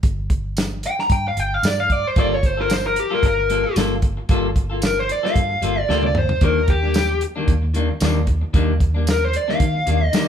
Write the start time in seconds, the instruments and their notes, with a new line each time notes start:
0.03 fingered electric bass G1, kick, closed hi-hat
0.30 kick, closed hi-hat
0.57 snare, closed hi-hat, tambourine
0.83 lead electric guitar G5, closed hi-hat
0.99 lead electric guitar A#5, snare
1.10 fingered electric bass G2, lead electric guitar G5, kick, closed hi-hat
1.28 lead electric guitar F5
1.37 fingered electric bass G1, lead electric guitar G5, closed hi-hat
1.54 lead electric guitar F5
1.63 fingered electric bass G2, lead electric guitar D5, snare, closed hi-hat, tambourine
1.80 lead electric guitar F5
1.90 lead electric guitar D5, kick, closed hi-hat
2.07 lead electric guitar C5
2.16 fingered electric bass G1, clean electric guitar G3 A#3 F4 A4, lead electric guitar D5, kick, closed hi-hat
2.34 lead electric guitar C#5
2.43 lead electric guitar C5, muted clean electric guitar stroke, kick, closed hi-hat
2.57 clean electric guitar A#3 F4 A4
2.61 lead electric guitar A#4
2.70 lead electric guitar C5, muted clean electric guitar stroke, snare, closed hi-hat, tambourine
2.84 lead electric guitar A#4, muted clean electric guitar stroke
2.96 lead electric guitar G4, muted clean electric guitar stroke, closed hi-hat
3.10 clean electric guitar G3 A#3 F4 A4
3.15 lead electric guitar A#4
3.23 fingered electric bass G1, lead electric guitar A#4, kick, closed hi-hat
3.37 muted clean electric guitar stroke
3.49 clean electric guitar G3 A#3 F4 A4, closed hi-hat
3.64 muted clean electric guitar stroke
3.76 fingered electric bass G1, clean electric guitar G3 A#3 F4 A4, snare, closed hi-hat, tambourine
4.02 muted clean electric guitar stroke, kick, closed hi-hat
4.17 muted clean electric guitar stroke
4.29 fingered electric bass G1, clean electric guitar G3 A#3 F4 A4, kick, closed hi-hat
4.56 muted clean electric guitar stroke, kick, closed hi-hat
4.70 clean electric guitar A#3 F4 A4
4.82 lead electric guitar A#4, muted clean electric guitar stroke, snare, closed hi-hat, tambourine
4.97 lead electric guitar C5, muted clean electric guitar stroke
5.09 lead electric guitar D5, muted clean electric guitar stroke, closed hi-hat
5.23 clean electric guitar G3 A#3 F4 A4, lead electric guitar F5, snare
5.36 fingered electric bass G2, kick, closed hi-hat
5.50 muted clean electric guitar stroke
5.62 fingered electric bass G1, clean electric guitar G3 A#3 F4 A4, closed hi-hat
5.76 lead electric guitar D5, muted clean electric guitar stroke
5.89 fingered electric bass D2, clean electric guitar G3 A#3 F4 A4, snare
6.03 lead electric guitar D5, high tom
6.15 lead electric guitar C5, muted clean electric guitar stroke, mid tom
6.29 muted clean electric guitar stroke, floor tom
6.41 fingered electric bass D#2, clean electric guitar D#3 G3 A#3 D4, lead electric guitar A#4, kick, closed hi-hat
6.68 lead electric guitar G4, muted clean electric guitar stroke, kick, closed hi-hat
6.83 clean electric guitar G3 A#3 D4
6.94 muted clean electric guitar stroke, snare, closed hi-hat, tambourine
7.09 muted clean electric guitar stroke
7.21 muted clean electric guitar stroke, closed hi-hat
7.36 clean electric guitar D#3 G3 A#3 D4
7.48 fingered electric bass D#2, kick, closed hi-hat
7.62 muted clean electric guitar stroke
7.74 clean electric guitar D#3 G3 A#3 D4, closed hi-hat
7.89 muted clean electric guitar stroke
8.00 fingered electric bass D#2, clean electric guitar D#3 G3 A#3 D4, snare, closed hi-hat, tambourine
8.27 muted clean electric guitar stroke, kick, closed hi-hat
8.42 muted clean electric guitar stroke
8.53 fingered electric bass D#2, clean electric guitar D#3 G3 A#3 D4, kick, closed hi-hat
8.80 muted clean electric guitar stroke, kick, closed hi-hat
8.94 clean electric guitar G3 A#3 D4
9.07 lead electric guitar A#4, muted clean electric guitar stroke, snare, closed hi-hat, tambourine
9.21 lead electric guitar C5, muted clean electric guitar stroke
9.33 lead electric guitar D5, muted clean electric guitar stroke, closed hi-hat
9.48 clean electric guitar D#3 G3 A#3 D4, lead electric guitar F5, snare
9.60 fingered electric bass D#3, kick, closed hi-hat
9.75 muted clean electric guitar stroke
9.86 fingered electric bass D#2, clean electric guitar D#3 G3 A#3 D4, closed hi-hat
10.01 lead electric guitar D#5, muted clean electric guitar stroke
10.13 clean electric guitar D#3 G3 A#3 D4, fingered electric bass D#3, snare, closed hi-hat, tambourine